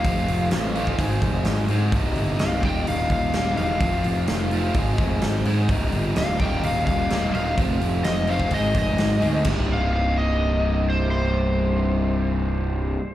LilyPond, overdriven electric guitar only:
\new Staff \with { instrumentName = "Overdriven electric guitar" } { \clef bass \time 4/4 \key c \minor \tempo 4 = 128 <f, c f a c' f'>4. <f, c f a c' f'>8 <aes, ees aes c' ees' aes'>4. <aes, ees aes c' ees' aes'>8 | <c, g, c g ees'>4. <ees, bes, ees g bes ees'>4. <ees, bes, ees g bes ees'>4 | <f, c f a c' f'>4. <f, c f a c' f'>8 <aes, ees aes c' ees' aes'>4. <aes, ees aes c' ees' aes'>8 | <c, g, c g ees'>4. <ees, bes, ees g bes ees'>4. <ees, bes, ees g bes ees'>4 |
<f, c f a c' f'>4. <f, c f a c' f'>8 <aes, ees aes c' ees' aes'>4. <aes, ees aes c' ees' aes'>8 | <c, g, c g ees'>1~ | <c, g, c g ees'>1 | }